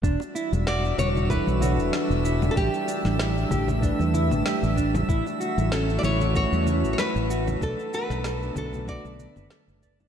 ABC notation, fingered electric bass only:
X:1
M:4/4
L:1/16
Q:"Swing 16ths" 1/4=95
K:Edor
V:1 name="Fingered electric bass" clef=bass
E,,, z2 E,,,3 E,,,3 B,,,2 E,,, z E,,,3 | A,,, z2 A,,,3 A,,,3 E,,2 A,,, z A,,,3 | A,,, z2 A,,,3 A,,,3 E,,2 A,,, z A,,,3 | B,,, z2 B,,,3 B,,,3 B,,, z F,,, z F,,,3 |]